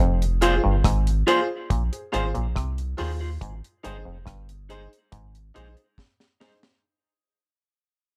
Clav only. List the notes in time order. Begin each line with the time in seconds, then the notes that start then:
0.00 F2
0.64 G2
0.84 G#2
1.70 A#2
2.13 G#2
2.35 A#2
2.56 C3
2.98 D#3
3.41 G#2
3.84 G2
4.05 F2
4.26 G2
5.12 G#2
5.55 A#2